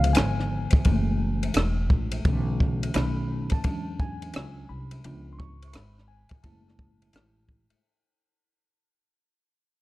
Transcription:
Already playing: C#2 D3 F3 B3
0.00 F5, ride
0.13 G#1 G#5, cross-stick, hi-hat pedal, ride
0.40 cross-stick
0.71 muted upright bass stroke, kick, ride
0.85 F#1 E3 G#3 A3, kick, ride
1.43 ride
1.54 E1, cross-stick, hi-hat pedal, ride
1.90 A#1, kick
2.12 ride
2.25 B1 D3 E3 A3 C#4, kick, ride
2.60 kick
2.83 ride
2.94 B1 D#3 A3 C#4 B5, cross-stick, hi-hat pedal, ride
3.50 A5, muted upright bass stroke, kick, ride
3.64 E2 F#3 G#3 C#4 D4, kick, ride
4.00 G#5, kick
4.22 ride
4.34 C#2, cross-stick, hi-hat pedal, ride
4.69 C2 B5
4.91 ride
5.04 C#2 F3 B3 D4, ride
5.33 C6
5.39 C#6, kick
5.62 ride
5.68 C#6
5.73 G#1 B5, cross-stick, hi-hat pedal, ride
5.98 cross-stick
6.08 G#5
6.29 muted upright bass stroke, kick, ride
6.43 F#1 G#3 A3 E4 A5, kick, ride
6.68 cross-stick
6.79 kick
7.02 ride
7.13 A1, cross-stick, hi-hat pedal, ride
7.49 kick
7.70 ride

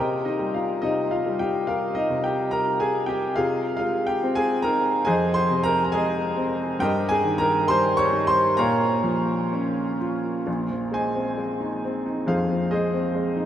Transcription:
Already playing: C3 G5
0.00 G4 A#4 D#5
0.25 D#4 D#5
0.39 G3
0.54 F4 F5
0.82 C3 D#4 D#5
1.11 F4 F5
1.26 G3
1.39 G4 G5
1.67 F4 A#4 F5
1.95 D#4 D#5
2.10 C3
2.24 G4 G5
2.51 A#4 A#5
2.80 G#4 G#5
3.06 G4 G5
3.36 C3 F4 G#4 F5
3.77 G#3 F4 F5
4.07 G4 G5
4.23 C4
4.35 G#4 G#5
4.62 D#4 A#4 A#5
5.05 F2 G#4 C5 D#5 G#5
5.34 C5 C6
5.50 C3
5.64 A#4 A#5
5.85 A#5
5.92 G#3 G#4 D#5 G#5
6.37 C4
6.79 G2 G4 A#4 D#5 G5
7.09 G#4 G#5
7.24 D#3
7.38 A#4 A#5
7.68 G3 C5 C6
7.97 C#5 C#6
8.12 D#4
8.27 C5 C6
8.57 A#2 A#4 C#5 F5 A#5
9.03 F3
9.53 C#4
10.01 F4
10.47 A#1 A#2
10.71 F3
10.91 G#3 C5 D#5 G#5
11.15 C4
11.37 G#3
11.60 D#4
11.84 C4
12.06 D#4
12.27 F2 F3 G#4 C5 F5
12.50 F3
12.71 G#3 G#4 C5 D#5
12.94 C4
13.15 G#3
13.37 D#4

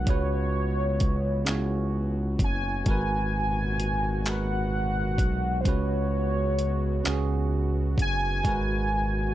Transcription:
Already playing: F#4 F#5
0.05 C#2 C#3 B3 C#4 F#4, kick, closed hi-hat
0.09 B4 C#5
1.00 kick, closed hi-hat
1.45 C#2 C#3 C#4 E4, clap, closed hi-hat
1.50 C#5
1.55 F#4
2.39 F#1, kick, closed hi-hat
2.44 G#5
2.85 G#1 A#2 B2 G#3 F#4 A#4 G#5, kick, closed hi-hat
2.91 B4
3.80 closed hi-hat
4.25 G#3 F#4 A#4, clap, closed hi-hat
4.29 B4 F#5
5.18 B1, kick, closed hi-hat
5.61 C#3 C5
5.65 C#2 C#3 B3 C#4 F#4 B4 C#5, kick, closed hi-hat
6.59 closed hi-hat
7.04 C#2 C#3 C#4 F#4, clap, closed hi-hat
7.10 G#4
7.98 F#1 G#5, kick, closed hi-hat
8.43 G#1 A#2 B2 G#3 F#4 A#4, kick, closed hi-hat
8.49 B4

